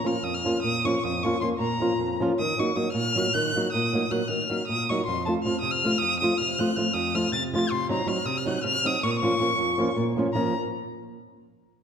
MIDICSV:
0, 0, Header, 1, 3, 480
1, 0, Start_track
1, 0, Key_signature, -5, "minor"
1, 0, Tempo, 384369
1, 1291, Time_signature, 7, 3, 24, 8
1, 7758, Tempo, 374298
1, 14966, End_track
2, 0, Start_track
2, 0, Title_t, "Violin"
2, 0, Program_c, 0, 40
2, 83, Note_on_c, 0, 89, 79
2, 292, Note_on_c, 0, 87, 91
2, 311, Note_off_c, 0, 89, 0
2, 434, Note_on_c, 0, 89, 90
2, 453, Note_off_c, 0, 87, 0
2, 777, Note_off_c, 0, 89, 0
2, 784, Note_on_c, 0, 87, 100
2, 1064, Note_on_c, 0, 85, 84
2, 1083, Note_off_c, 0, 87, 0
2, 1295, Note_on_c, 0, 87, 90
2, 1314, Note_off_c, 0, 85, 0
2, 1540, Note_on_c, 0, 85, 93
2, 1558, Note_off_c, 0, 87, 0
2, 1751, Note_off_c, 0, 85, 0
2, 1758, Note_on_c, 0, 84, 84
2, 1858, Note_off_c, 0, 84, 0
2, 1984, Note_on_c, 0, 82, 85
2, 2706, Note_off_c, 0, 82, 0
2, 2986, Note_on_c, 0, 87, 101
2, 3236, Note_on_c, 0, 85, 88
2, 3255, Note_off_c, 0, 87, 0
2, 3445, Note_on_c, 0, 87, 93
2, 3464, Note_off_c, 0, 85, 0
2, 3650, Note_off_c, 0, 87, 0
2, 3657, Note_on_c, 0, 89, 123
2, 4169, Note_on_c, 0, 90, 117
2, 4188, Note_off_c, 0, 89, 0
2, 4648, Note_off_c, 0, 90, 0
2, 4655, Note_on_c, 0, 87, 96
2, 5131, Note_on_c, 0, 90, 86
2, 5149, Note_off_c, 0, 87, 0
2, 5345, Note_on_c, 0, 89, 94
2, 5363, Note_off_c, 0, 90, 0
2, 5839, Note_off_c, 0, 89, 0
2, 5844, Note_on_c, 0, 87, 99
2, 6108, Note_on_c, 0, 85, 93
2, 6126, Note_off_c, 0, 87, 0
2, 6317, Note_off_c, 0, 85, 0
2, 6324, Note_on_c, 0, 84, 96
2, 6559, Note_off_c, 0, 84, 0
2, 6566, Note_on_c, 0, 81, 77
2, 6667, Note_off_c, 0, 81, 0
2, 6780, Note_on_c, 0, 89, 90
2, 6988, Note_off_c, 0, 89, 0
2, 7003, Note_on_c, 0, 87, 109
2, 7130, Note_on_c, 0, 89, 109
2, 7149, Note_off_c, 0, 87, 0
2, 7471, Note_on_c, 0, 87, 125
2, 7489, Note_off_c, 0, 89, 0
2, 7738, Note_off_c, 0, 87, 0
2, 7746, Note_on_c, 0, 87, 96
2, 7967, Note_on_c, 0, 89, 107
2, 7986, Note_off_c, 0, 87, 0
2, 8242, Note_on_c, 0, 90, 93
2, 8261, Note_off_c, 0, 89, 0
2, 8466, Note_on_c, 0, 89, 97
2, 8486, Note_off_c, 0, 90, 0
2, 8683, Note_on_c, 0, 87, 108
2, 8702, Note_off_c, 0, 89, 0
2, 8962, Note_on_c, 0, 89, 104
2, 8982, Note_off_c, 0, 87, 0
2, 9182, Note_off_c, 0, 89, 0
2, 9190, Note_on_c, 0, 93, 112
2, 9314, Note_off_c, 0, 93, 0
2, 9472, Note_on_c, 0, 93, 94
2, 9678, Note_on_c, 0, 84, 101
2, 9697, Note_off_c, 0, 93, 0
2, 9938, Note_off_c, 0, 84, 0
2, 9948, Note_on_c, 0, 82, 82
2, 10151, Note_on_c, 0, 89, 94
2, 10170, Note_off_c, 0, 82, 0
2, 10376, Note_on_c, 0, 87, 114
2, 10396, Note_off_c, 0, 89, 0
2, 10528, Note_on_c, 0, 89, 92
2, 10547, Note_off_c, 0, 87, 0
2, 10649, Note_off_c, 0, 89, 0
2, 10657, Note_on_c, 0, 90, 108
2, 10700, Note_off_c, 0, 90, 0
2, 10708, Note_on_c, 0, 90, 91
2, 10755, Note_off_c, 0, 90, 0
2, 10763, Note_on_c, 0, 90, 88
2, 10866, Note_off_c, 0, 90, 0
2, 10874, Note_on_c, 0, 89, 127
2, 11159, Note_on_c, 0, 87, 110
2, 11178, Note_off_c, 0, 89, 0
2, 11377, Note_on_c, 0, 85, 98
2, 11397, Note_off_c, 0, 87, 0
2, 11470, Note_on_c, 0, 87, 82
2, 11490, Note_off_c, 0, 85, 0
2, 11550, Note_on_c, 0, 85, 124
2, 11569, Note_off_c, 0, 87, 0
2, 12558, Note_off_c, 0, 85, 0
2, 13038, Note_on_c, 0, 82, 80
2, 13277, Note_off_c, 0, 82, 0
2, 14966, End_track
3, 0, Start_track
3, 0, Title_t, "Nylon-string guitar"
3, 0, Program_c, 1, 24
3, 49, Note_on_c, 1, 53, 60
3, 59, Note_on_c, 1, 58, 58
3, 67, Note_on_c, 1, 61, 53
3, 76, Note_on_c, 1, 65, 68
3, 193, Note_off_c, 1, 53, 0
3, 195, Note_off_c, 1, 58, 0
3, 202, Note_off_c, 1, 61, 0
3, 204, Note_off_c, 1, 65, 0
3, 286, Note_on_c, 1, 41, 71
3, 554, Note_on_c, 1, 53, 71
3, 561, Note_on_c, 1, 58, 63
3, 566, Note_on_c, 1, 61, 67
3, 575, Note_on_c, 1, 65, 81
3, 669, Note_off_c, 1, 41, 0
3, 696, Note_off_c, 1, 53, 0
3, 700, Note_off_c, 1, 58, 0
3, 701, Note_off_c, 1, 61, 0
3, 707, Note_off_c, 1, 65, 0
3, 792, Note_on_c, 1, 46, 70
3, 1055, Note_on_c, 1, 53, 73
3, 1063, Note_on_c, 1, 58, 65
3, 1067, Note_on_c, 1, 61, 61
3, 1081, Note_on_c, 1, 65, 80
3, 1173, Note_off_c, 1, 46, 0
3, 1197, Note_off_c, 1, 53, 0
3, 1202, Note_off_c, 1, 58, 0
3, 1202, Note_off_c, 1, 61, 0
3, 1210, Note_off_c, 1, 65, 0
3, 1302, Note_on_c, 1, 41, 76
3, 1549, Note_on_c, 1, 53, 80
3, 1557, Note_on_c, 1, 58, 67
3, 1565, Note_on_c, 1, 61, 60
3, 1571, Note_on_c, 1, 65, 91
3, 1654, Note_off_c, 1, 41, 0
3, 1680, Note_off_c, 1, 53, 0
3, 1684, Note_off_c, 1, 58, 0
3, 1685, Note_off_c, 1, 61, 0
3, 1691, Note_off_c, 1, 65, 0
3, 1764, Note_on_c, 1, 53, 57
3, 1779, Note_on_c, 1, 58, 61
3, 1783, Note_on_c, 1, 61, 65
3, 1791, Note_on_c, 1, 65, 67
3, 1897, Note_off_c, 1, 53, 0
3, 1904, Note_off_c, 1, 58, 0
3, 1907, Note_off_c, 1, 61, 0
3, 1909, Note_off_c, 1, 65, 0
3, 1986, Note_on_c, 1, 46, 74
3, 2251, Note_on_c, 1, 53, 74
3, 2257, Note_on_c, 1, 58, 58
3, 2266, Note_on_c, 1, 61, 68
3, 2271, Note_on_c, 1, 65, 78
3, 2365, Note_off_c, 1, 46, 0
3, 2391, Note_off_c, 1, 53, 0
3, 2394, Note_off_c, 1, 58, 0
3, 2399, Note_off_c, 1, 61, 0
3, 2400, Note_off_c, 1, 65, 0
3, 2487, Note_on_c, 1, 41, 74
3, 2751, Note_on_c, 1, 53, 92
3, 2759, Note_on_c, 1, 58, 75
3, 2763, Note_on_c, 1, 61, 79
3, 2771, Note_on_c, 1, 65, 103
3, 2865, Note_off_c, 1, 41, 0
3, 2890, Note_off_c, 1, 53, 0
3, 2892, Note_off_c, 1, 58, 0
3, 2896, Note_off_c, 1, 61, 0
3, 2900, Note_off_c, 1, 65, 0
3, 2988, Note_on_c, 1, 51, 87
3, 3214, Note_off_c, 1, 51, 0
3, 3219, Note_on_c, 1, 54, 70
3, 3231, Note_on_c, 1, 58, 67
3, 3240, Note_on_c, 1, 63, 80
3, 3245, Note_on_c, 1, 66, 86
3, 3358, Note_off_c, 1, 54, 0
3, 3364, Note_off_c, 1, 58, 0
3, 3368, Note_off_c, 1, 63, 0
3, 3369, Note_off_c, 1, 66, 0
3, 3442, Note_on_c, 1, 54, 65
3, 3446, Note_on_c, 1, 58, 68
3, 3450, Note_on_c, 1, 63, 59
3, 3459, Note_on_c, 1, 66, 69
3, 3579, Note_off_c, 1, 54, 0
3, 3579, Note_off_c, 1, 58, 0
3, 3582, Note_off_c, 1, 63, 0
3, 3587, Note_off_c, 1, 66, 0
3, 3670, Note_on_c, 1, 46, 76
3, 3943, Note_on_c, 1, 54, 80
3, 3952, Note_on_c, 1, 58, 64
3, 3960, Note_on_c, 1, 63, 61
3, 3967, Note_on_c, 1, 66, 73
3, 4048, Note_off_c, 1, 46, 0
3, 4078, Note_off_c, 1, 54, 0
3, 4081, Note_off_c, 1, 58, 0
3, 4086, Note_off_c, 1, 63, 0
3, 4090, Note_off_c, 1, 66, 0
3, 4180, Note_on_c, 1, 51, 73
3, 4434, Note_off_c, 1, 51, 0
3, 4439, Note_on_c, 1, 54, 80
3, 4444, Note_on_c, 1, 58, 70
3, 4452, Note_on_c, 1, 63, 63
3, 4462, Note_on_c, 1, 66, 79
3, 4574, Note_off_c, 1, 54, 0
3, 4576, Note_off_c, 1, 58, 0
3, 4580, Note_off_c, 1, 63, 0
3, 4585, Note_off_c, 1, 66, 0
3, 4670, Note_on_c, 1, 46, 78
3, 4909, Note_on_c, 1, 54, 75
3, 4922, Note_on_c, 1, 58, 69
3, 4928, Note_on_c, 1, 63, 69
3, 4935, Note_on_c, 1, 66, 73
3, 5019, Note_off_c, 1, 46, 0
3, 5042, Note_off_c, 1, 54, 0
3, 5048, Note_off_c, 1, 58, 0
3, 5051, Note_off_c, 1, 63, 0
3, 5054, Note_off_c, 1, 66, 0
3, 5124, Note_on_c, 1, 54, 60
3, 5129, Note_on_c, 1, 58, 59
3, 5133, Note_on_c, 1, 63, 52
3, 5144, Note_on_c, 1, 66, 66
3, 5258, Note_off_c, 1, 54, 0
3, 5259, Note_off_c, 1, 58, 0
3, 5262, Note_off_c, 1, 63, 0
3, 5267, Note_off_c, 1, 66, 0
3, 5355, Note_on_c, 1, 51, 72
3, 5610, Note_off_c, 1, 51, 0
3, 5615, Note_on_c, 1, 54, 68
3, 5621, Note_on_c, 1, 58, 55
3, 5625, Note_on_c, 1, 63, 53
3, 5639, Note_on_c, 1, 66, 74
3, 5750, Note_off_c, 1, 54, 0
3, 5754, Note_off_c, 1, 58, 0
3, 5755, Note_off_c, 1, 63, 0
3, 5762, Note_off_c, 1, 66, 0
3, 5859, Note_on_c, 1, 46, 63
3, 6117, Note_on_c, 1, 54, 71
3, 6122, Note_on_c, 1, 58, 65
3, 6129, Note_on_c, 1, 63, 71
3, 6135, Note_on_c, 1, 66, 83
3, 6225, Note_off_c, 1, 46, 0
3, 6248, Note_off_c, 1, 54, 0
3, 6250, Note_off_c, 1, 58, 0
3, 6254, Note_off_c, 1, 63, 0
3, 6257, Note_off_c, 1, 66, 0
3, 6340, Note_on_c, 1, 41, 72
3, 6577, Note_on_c, 1, 53, 74
3, 6584, Note_on_c, 1, 57, 61
3, 6597, Note_on_c, 1, 60, 66
3, 6602, Note_on_c, 1, 65, 78
3, 6687, Note_off_c, 1, 41, 0
3, 6710, Note_off_c, 1, 53, 0
3, 6711, Note_off_c, 1, 57, 0
3, 6720, Note_off_c, 1, 60, 0
3, 6721, Note_off_c, 1, 65, 0
3, 6805, Note_on_c, 1, 53, 66
3, 6815, Note_on_c, 1, 57, 57
3, 6825, Note_on_c, 1, 60, 62
3, 6828, Note_on_c, 1, 65, 66
3, 6931, Note_off_c, 1, 53, 0
3, 6937, Note_off_c, 1, 57, 0
3, 6939, Note_off_c, 1, 60, 0
3, 6942, Note_off_c, 1, 65, 0
3, 7023, Note_on_c, 1, 48, 72
3, 7290, Note_on_c, 1, 53, 66
3, 7299, Note_on_c, 1, 57, 71
3, 7306, Note_on_c, 1, 60, 58
3, 7318, Note_on_c, 1, 65, 75
3, 7392, Note_off_c, 1, 48, 0
3, 7420, Note_off_c, 1, 53, 0
3, 7424, Note_off_c, 1, 57, 0
3, 7428, Note_off_c, 1, 60, 0
3, 7433, Note_off_c, 1, 65, 0
3, 7510, Note_on_c, 1, 41, 67
3, 7767, Note_on_c, 1, 53, 70
3, 7773, Note_on_c, 1, 57, 70
3, 7782, Note_on_c, 1, 60, 57
3, 7788, Note_on_c, 1, 65, 80
3, 7883, Note_off_c, 1, 41, 0
3, 7907, Note_off_c, 1, 53, 0
3, 7910, Note_off_c, 1, 57, 0
3, 7915, Note_off_c, 1, 60, 0
3, 7915, Note_off_c, 1, 65, 0
3, 8001, Note_on_c, 1, 48, 67
3, 8239, Note_on_c, 1, 53, 72
3, 8249, Note_on_c, 1, 57, 66
3, 8257, Note_on_c, 1, 60, 66
3, 8262, Note_on_c, 1, 65, 91
3, 8359, Note_off_c, 1, 48, 0
3, 8379, Note_off_c, 1, 53, 0
3, 8384, Note_off_c, 1, 57, 0
3, 8388, Note_off_c, 1, 60, 0
3, 8391, Note_off_c, 1, 65, 0
3, 8470, Note_on_c, 1, 53, 60
3, 8478, Note_on_c, 1, 57, 50
3, 8488, Note_on_c, 1, 60, 59
3, 8494, Note_on_c, 1, 65, 73
3, 8605, Note_off_c, 1, 53, 0
3, 8609, Note_off_c, 1, 57, 0
3, 8614, Note_off_c, 1, 60, 0
3, 8615, Note_off_c, 1, 65, 0
3, 8691, Note_on_c, 1, 41, 84
3, 8956, Note_on_c, 1, 53, 70
3, 8965, Note_on_c, 1, 57, 71
3, 8971, Note_on_c, 1, 60, 68
3, 8983, Note_on_c, 1, 65, 71
3, 9074, Note_off_c, 1, 41, 0
3, 9099, Note_off_c, 1, 53, 0
3, 9103, Note_off_c, 1, 57, 0
3, 9106, Note_off_c, 1, 60, 0
3, 9112, Note_off_c, 1, 65, 0
3, 9182, Note_on_c, 1, 48, 71
3, 9451, Note_on_c, 1, 53, 72
3, 9465, Note_on_c, 1, 57, 63
3, 9471, Note_on_c, 1, 60, 64
3, 9479, Note_on_c, 1, 65, 82
3, 9568, Note_off_c, 1, 48, 0
3, 9596, Note_off_c, 1, 53, 0
3, 9603, Note_off_c, 1, 57, 0
3, 9607, Note_off_c, 1, 60, 0
3, 9609, Note_off_c, 1, 65, 0
3, 9684, Note_on_c, 1, 48, 76
3, 9912, Note_on_c, 1, 54, 73
3, 9922, Note_on_c, 1, 60, 68
3, 9927, Note_on_c, 1, 63, 66
3, 9938, Note_on_c, 1, 66, 80
3, 10045, Note_off_c, 1, 48, 0
3, 10063, Note_off_c, 1, 54, 0
3, 10064, Note_off_c, 1, 60, 0
3, 10069, Note_off_c, 1, 63, 0
3, 10075, Note_off_c, 1, 66, 0
3, 10133, Note_on_c, 1, 54, 73
3, 10142, Note_on_c, 1, 60, 58
3, 10149, Note_on_c, 1, 63, 64
3, 10160, Note_on_c, 1, 66, 68
3, 10282, Note_off_c, 1, 54, 0
3, 10287, Note_off_c, 1, 60, 0
3, 10289, Note_off_c, 1, 63, 0
3, 10295, Note_off_c, 1, 66, 0
3, 10373, Note_on_c, 1, 48, 76
3, 10634, Note_on_c, 1, 54, 71
3, 10641, Note_on_c, 1, 60, 66
3, 10646, Note_on_c, 1, 63, 68
3, 10660, Note_on_c, 1, 66, 80
3, 10757, Note_off_c, 1, 48, 0
3, 10782, Note_off_c, 1, 54, 0
3, 10785, Note_off_c, 1, 60, 0
3, 10787, Note_off_c, 1, 63, 0
3, 10795, Note_off_c, 1, 66, 0
3, 10876, Note_on_c, 1, 48, 83
3, 11136, Note_on_c, 1, 54, 68
3, 11145, Note_on_c, 1, 60, 74
3, 11152, Note_on_c, 1, 63, 71
3, 11162, Note_on_c, 1, 66, 81
3, 11257, Note_off_c, 1, 48, 0
3, 11281, Note_off_c, 1, 54, 0
3, 11286, Note_off_c, 1, 60, 0
3, 11289, Note_off_c, 1, 63, 0
3, 11294, Note_off_c, 1, 66, 0
3, 11374, Note_on_c, 1, 46, 77
3, 11614, Note_on_c, 1, 53, 83
3, 11629, Note_on_c, 1, 58, 67
3, 11637, Note_on_c, 1, 61, 65
3, 11641, Note_on_c, 1, 65, 79
3, 11731, Note_off_c, 1, 46, 0
3, 11754, Note_off_c, 1, 53, 0
3, 11762, Note_off_c, 1, 58, 0
3, 11764, Note_off_c, 1, 61, 0
3, 11767, Note_off_c, 1, 65, 0
3, 11837, Note_on_c, 1, 53, 52
3, 11844, Note_on_c, 1, 58, 62
3, 11851, Note_on_c, 1, 61, 55
3, 11858, Note_on_c, 1, 65, 76
3, 11974, Note_off_c, 1, 53, 0
3, 11978, Note_off_c, 1, 58, 0
3, 11980, Note_off_c, 1, 61, 0
3, 11984, Note_off_c, 1, 65, 0
3, 12069, Note_on_c, 1, 41, 79
3, 12331, Note_on_c, 1, 53, 82
3, 12337, Note_on_c, 1, 58, 85
3, 12347, Note_on_c, 1, 61, 79
3, 12360, Note_on_c, 1, 65, 88
3, 12444, Note_off_c, 1, 41, 0
3, 12469, Note_off_c, 1, 53, 0
3, 12472, Note_off_c, 1, 58, 0
3, 12477, Note_off_c, 1, 61, 0
3, 12483, Note_off_c, 1, 65, 0
3, 12570, Note_on_c, 1, 46, 89
3, 12833, Note_on_c, 1, 53, 77
3, 12845, Note_on_c, 1, 58, 77
3, 12851, Note_on_c, 1, 61, 80
3, 12858, Note_on_c, 1, 65, 92
3, 12942, Note_off_c, 1, 46, 0
3, 12967, Note_off_c, 1, 53, 0
3, 12973, Note_off_c, 1, 58, 0
3, 12976, Note_off_c, 1, 61, 0
3, 12979, Note_off_c, 1, 65, 0
3, 13062, Note_on_c, 1, 53, 91
3, 13070, Note_on_c, 1, 58, 79
3, 13073, Note_on_c, 1, 61, 66
3, 13074, Note_on_c, 1, 65, 104
3, 13291, Note_off_c, 1, 53, 0
3, 13291, Note_off_c, 1, 65, 0
3, 13293, Note_off_c, 1, 61, 0
3, 13294, Note_off_c, 1, 58, 0
3, 14966, End_track
0, 0, End_of_file